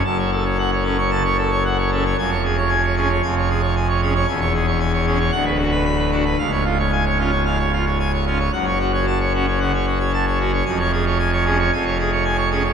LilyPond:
<<
  \new Staff \with { instrumentName = "Pipe organ" } { \time 4/4 \key fis \minor \tempo 4 = 113 a''16 cis''16 a'16 cis''16 fis''16 cis''16 a'16 cis''16 a''16 cis''16 a'16 cis''16 fis''16 cis''16 a'16 cis''16 | gis''16 cis''16 gis'16 cis''16 gis''16 cis''16 gis'16 cis''16 gis''16 cis''16 gis'16 cis''16 gis''16 cis''16 gis'16 cis''16 | gis''16 cis''16 gis'16 cis''16 gis''16 cis''16 gis'16 cis''16 fis''16 b'16 fis'16 b'16 b''16 b'16 fis'16 b'16 | eis''16 cis''16 eis'16 cis''16 gis''16 cis''16 eis'16 cis''16 eis''16 cis''16 eis'16 cis''16 gis''16 cis''16 eis'16 cis''16 |
fis''16 cis''16 fis'16 cis''16 a''16 cis''16 fis'16 cis''16 fis''16 cis''16 fis'16 cis''16 a''16 cis''16 fis'16 cis''16 | gis''16 cis''16 gis'16 cis''16 gis''16 cis''16 gis'16 cis''16 gis''16 cis''16 gis'16 cis''16 gis''16 cis''16 gis'16 cis''16 | }
  \new Staff \with { instrumentName = "Pipe organ" } { \clef bass \time 4/4 \key fis \minor << { fis,4. cis'16 r16 cis16 r4 r16 cis'16 r16 | eis,4. cis'16 r16 eis,4. cis'16 r16 | e,4. cis'16 r16 d,4. d'16 r16 | cis,4. cis'16 r16 gis,16 r4 r16 cis'16 r16 |
fis,4. cis'16 r16 cis16 r4 r16 cis'16 r16 | eis,4. cis'16 r16 eis,4. cis'16 r16 | } \\ { fis,,1 | eis,,2 eis,,2 | e,,2 d,,2 | cis,,1 |
fis,,1 | eis,,2 eis,,2 | } >> }
>>